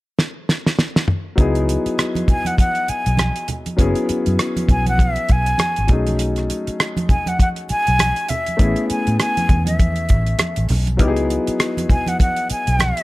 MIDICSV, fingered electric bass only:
0, 0, Header, 1, 3, 480
1, 0, Start_track
1, 0, Key_signature, 4, "minor"
1, 0, Tempo, 601202
1, 1103, Time_signature, 4, 2, 24, 8
1, 10403, End_track
2, 0, Start_track
2, 0, Title_t, "Fingered electric bass"
2, 0, Program_c, 0, 33
2, 1107, Note_on_c, 0, 37, 88
2, 1402, Note_off_c, 0, 37, 0
2, 2447, Note_on_c, 0, 35, 73
2, 2633, Note_off_c, 0, 35, 0
2, 3027, Note_on_c, 0, 30, 97
2, 3135, Note_off_c, 0, 30, 0
2, 3408, Note_on_c, 0, 42, 79
2, 3485, Note_off_c, 0, 42, 0
2, 3742, Note_on_c, 0, 35, 79
2, 4118, Note_off_c, 0, 35, 0
2, 4231, Note_on_c, 0, 35, 84
2, 4416, Note_off_c, 0, 35, 0
2, 4617, Note_on_c, 0, 32, 75
2, 4690, Note_off_c, 0, 32, 0
2, 4706, Note_on_c, 0, 35, 73
2, 5190, Note_off_c, 0, 35, 0
2, 6293, Note_on_c, 0, 35, 75
2, 6476, Note_off_c, 0, 35, 0
2, 6865, Note_on_c, 0, 33, 98
2, 6973, Note_off_c, 0, 33, 0
2, 7246, Note_on_c, 0, 45, 79
2, 7323, Note_off_c, 0, 45, 0
2, 7581, Note_on_c, 0, 40, 82
2, 8066, Note_on_c, 0, 33, 78
2, 8078, Note_off_c, 0, 40, 0
2, 8252, Note_off_c, 0, 33, 0
2, 8442, Note_on_c, 0, 33, 74
2, 8520, Note_off_c, 0, 33, 0
2, 8544, Note_on_c, 0, 35, 78
2, 8781, Note_off_c, 0, 35, 0
2, 8781, Note_on_c, 0, 37, 78
2, 9078, Note_off_c, 0, 37, 0
2, 10121, Note_on_c, 0, 35, 77
2, 10308, Note_off_c, 0, 35, 0
2, 10403, End_track
3, 0, Start_track
3, 0, Title_t, "Muted fingered electric bass strokes"
3, 1485, Note_on_c, 9, 29, 37
3, 1565, Note_off_c, 9, 29, 0
3, 2311, Note_on_c, 9, 29, 43
3, 2391, Note_off_c, 9, 29, 0
3, 3270, Note_on_c, 9, 29, 47
3, 3350, Note_off_c, 9, 29, 0
3, 5331, Note_on_c, 9, 29, 38
3, 5410, Note_off_c, 9, 29, 0
3, 6150, Note_on_c, 9, 29, 46
3, 6230, Note_off_c, 9, 29, 0
3, 7110, Note_on_c, 9, 29, 43
3, 7190, Note_off_c, 9, 29, 0
3, 9165, Note_on_c, 9, 29, 37
3, 9245, Note_off_c, 9, 29, 0
3, 9984, Note_on_c, 9, 29, 43
3, 10064, Note_off_c, 9, 29, 0
3, 10403, End_track
0, 0, End_of_file